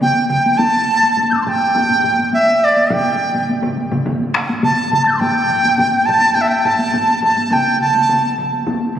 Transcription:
0.01 0.28 G5 medium
0.01 taiko mid loud
0.01 taiko high medium
0.29 0.59 G5 medium
0.29 taiko mid loud
0.46 taiko high medium
0.58 1.30 A5 loud
0.58 taiko loud
0.58 taiko high medium
1.03 taiko high medium
1.17 taiko low-mid medium
1.17 taiko high medium
1.31 1.36 E6 soft
1.31 1.33 G6 soft
1.31 taiko low-mid medium
1.37 1.41 D6 soft
1.42 1.50 A5 medium
1.42 1.45 C6 medium
1.46 2.33 G5 loud
1.46 taiko low-mid loud
1.61 taiko high soft
1.75 taiko loud
1.75 taiko low-mid medium
1.75 taiko high medium
1.89 taiko low-mid medium
2.04 taiko low-mid medium
2.18 taiko high soft
2.33 2.66 E5 medium
2.33 taiko high medium
2.64 2.94 D5 medium
2.76 taiko high soft
2.90 3.50 G5 medium
2.90 taiko loud
2.90 taiko low-mid loud
2.90 taiko mid medium
2.90 taiko high medium
3.34 taiko low-mid medium
3.34 taiko mid medium
3.34 taiko high soft
3.49 taiko high medium
3.63 taiko low-mid medium
3.63 taiko mid loud
3.77 taiko high soft
3.92 taiko low-mid medium
3.92 taiko mid loud
3.92 taiko high soft
4.06 taiko loud
4.06 taiko low-mid loud
4.06 taiko mid loud
4.06 taiko high medium
4.35 taiko rim medium
4.49 taiko high medium
4.63 4.91 A5 medium
4.63 taiko low-mid medium
4.63 taiko mid loud
4.63 taiko high medium
4.92 5.05 A5 medium
4.92 taiko low-mid loud
4.92 taiko mid loud
5.05 5.10 G6 soft
5.05 5.07 A6 soft
5.05 taiko high soft
5.11 5.16 C6 medium
5.11 5.14 D6 soft
5.11 5.13 E6 soft
5.19 6.07 G5 medium
5.19 taiko loud
5.19 taiko low-mid medium
5.19 taiko high medium
5.49 taiko low-mid medium
5.64 taiko low-mid medium
5.64 taiko high medium
5.79 taiko low-mid medium
5.79 taiko high medium
6.06 6.36 A5 medium
6.06 taiko low-mid loud
6.21 taiko high medium
6.35 6.43 G5 medium
6.35 taiko loud
6.35 taiko high medium
6.41 6.49 E5 medium
6.48 6.67 G5 medium
6.65 7.23 A5 medium
6.65 taiko low-mid loud
6.79 taiko high medium
6.94 taiko low-mid medium
6.94 taiko high medium
7.22 7.54 A5 medium
7.22 taiko low-mid medium
7.37 taiko high soft
7.51 7.81 G5 medium
7.51 taiko loud
7.51 taiko mid medium
7.51 taiko high medium
7.81 8.35 A5 medium
7.81 taiko mid medium
7.94 taiko mid medium
7.94 taiko high medium
8.09 taiko mid loud
8.09 taiko high medium
8.38 taiko mid loud
8.53 taiko high soft
8.67 taiko loud
8.67 taiko high medium
8.95 taiko mid medium

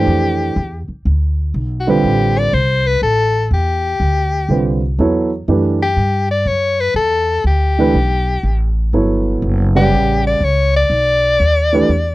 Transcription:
0.00 0.53 E3 medium
0.00 0.53 A3 soft
0.00 0.53 D4 medium
0.00 0.54 G4 soft
0.00 0.84 G4 medium
0.00 0.54 C5 medium
0.07 0.55 F2 medium
0.56 0.87 E2 medium
0.88 muted upright bass stroke soft
1.05 1.53 D2 medium
1.54 2.02 B1 medium
1.80 1.91 F#4 medium
1.87 2.50 D3 medium
1.87 2.50 G3 medium
1.87 2.50 C4 medium
1.87 2.50 F4 medium
1.87 2.40 G4 medium
1.87 2.51 B4 medium
2.04 2.52 A1 medium
2.39 2.56 D5 medium
2.53 3.01 C2 medium
2.53 2.88 C5 medium
2.87 3.02 B4 medium
3.02 3.50 A1 medium
3.02 3.49 A4 medium
3.51 3.99 E2 medium
3.51 4.80 G4 medium
4.00 4.48 D2 medium
4.49 4.97 C2 medium
4.49 4.79 D3 soft
4.49 4.80 G3 soft
4.49 4.80 C4 soft
4.49 4.80 F4 soft
4.49 4.80 B4 soft
4.99 5.47 E2 medium
4.99 5.29 F#3 medium
4.99 5.29 B3 medium
4.99 5.29 E4 medium
4.99 5.29 A4 medium
4.99 5.29 C#5 medium
5.48 5.96 F#2 medium
5.48 5.78 E3 medium
5.48 5.78 A3 soft
5.48 5.78 D4 medium
5.48 5.79 G4 medium
5.48 5.79 B4 medium
5.82 6.28 G4 medium
5.97 6.45 G2 medium
6.31 6.49 D5 medium
6.46 6.94 F#2 medium
6.46 6.82 C#5 medium
6.81 6.95 B4 medium
6.94 7.43 E2 medium
6.94 7.42 A4 medium
7.44 7.93 D2 medium
7.44 8.74 G4 medium
7.79 7.93 E3 medium
7.79 7.94 A3 medium
7.79 7.94 D4 medium
7.79 7.94 G4 medium
7.79 7.94 B4 medium
7.94 8.42 B1 medium
8.43 8.92 A1 medium
8.93 9.41 G1 medium
8.93 9.69 F#3 medium
8.93 9.69 B3 soft
8.93 9.69 E4 medium
8.93 9.69 A4 soft
8.93 9.70 C#5 medium
9.42 9.90 F#1 medium
9.75 10.38 C#3 medium
9.75 10.38 G3 medium
9.75 10.22 G4 medium
9.75 10.39 B4 medium
9.75 10.39 D5 medium
9.75 10.39 F#5 medium
9.92 10.40 A1 medium
10.27 10.46 D5 medium
10.41 10.89 C#2 medium
10.41 10.76 C#5 medium
10.76 12.15 D5 loud
10.90 11.38 B1 medium
11.40 11.88 D#2 medium
11.73 11.88 E3 medium
11.73 11.88 A3 medium
11.73 11.88 D4 medium
11.73 11.88 G4 medium
11.73 11.89 B4 medium
11.89 12.15 E2 medium

